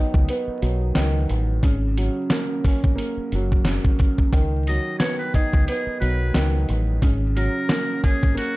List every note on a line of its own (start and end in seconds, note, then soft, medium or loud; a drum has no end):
0.00 0.29 D#3 medium
0.00 0.61 F#3 medium
0.00 0.28 B3 loud
0.00 1.30 D#4 medium
0.14 0.27 C#2 loud
0.14 kick loud
0.29 1.64 B3 loud
0.29 closed hi-hat medium
0.47 muted fingered electric bass stroke soft
0.62 0.91 B1 medium
0.62 1.63 F#3 medium
0.62 closed hi-hat medium
0.95 1.25 C#2 medium
0.95 1.63 D#3 medium
0.95 snare loud
0.95 closed hi-hat loud
1.29 1.59 A1 medium
1.29 closed hi-hat medium
1.63 2.08 G#1 loud
1.63 2.98 C#3 loud
1.63 kick loud
1.63 closed hi-hat medium
1.98 3.32 F#3 medium
1.98 closed hi-hat medium
2.30 2.94 A#3 medium
2.30 snare loud
2.30 closed hi-hat medium
2.64 3.99 C#4 medium
2.64 kick loud
2.64 open hi-hat medium
2.84 2.96 G#1 medium
2.84 kick loud
2.95 4.32 A#3 medium
2.95 closed hi-hat medium
3.17 muted fingered electric bass stroke medium
3.32 3.77 F#1 medium
3.32 4.34 F#3 medium
3.32 closed hi-hat medium
3.52 kick loud
3.65 4.34 C#3 medium
3.65 snare loud
3.65 closed hi-hat medium
3.85 kick loud
3.99 kick loud
3.99 closed hi-hat medium
4.18 kick medium
4.33 4.78 C#2 loud
4.33 5.68 D#3 medium
4.33 kick loud
4.33 closed hi-hat medium
4.67 5.99 F#3 medium
4.67 4.98 D#5 medium
4.67 closed hi-hat medium
4.99 5.68 B3 loud
4.99 5.16 C#5 medium
4.99 snare loud
4.99 closed hi-hat medium
5.19 5.32 B4 medium
5.34 6.69 D#4 medium
5.34 5.65 G#4 medium
5.34 kick loud
5.34 closed hi-hat medium
5.54 5.66 C#2 loud
5.54 kick loud
5.67 7.03 B3 loud
5.67 5.98 G#4 medium
5.67 closed hi-hat loud
5.87 muted fingered electric bass stroke soft
6.00 6.30 B1 loud
6.00 7.02 F#3 medium
6.00 6.50 B4 medium
6.00 closed hi-hat medium
6.34 6.64 C#2 medium
6.34 7.02 D#3 medium
6.34 snare loud
6.34 closed hi-hat loud
6.69 6.98 A1 medium
6.69 closed hi-hat medium
7.02 7.47 G#1 loud
7.02 8.38 C#3 loud
7.02 kick loud
7.02 closed hi-hat medium
7.37 8.57 F#3 medium
7.37 8.00 A#4 medium
7.37 closed hi-hat medium
7.69 8.33 A#3 medium
7.69 snare loud
7.69 closed hi-hat medium
8.03 8.57 C#4 medium
8.03 8.34 G#4 medium
8.03 kick loud
8.03 closed hi-hat medium
8.23 8.36 G#1 medium
8.23 kick loud
8.35 8.57 A#3 medium
8.35 8.57 F#4 medium
8.35 closed hi-hat loud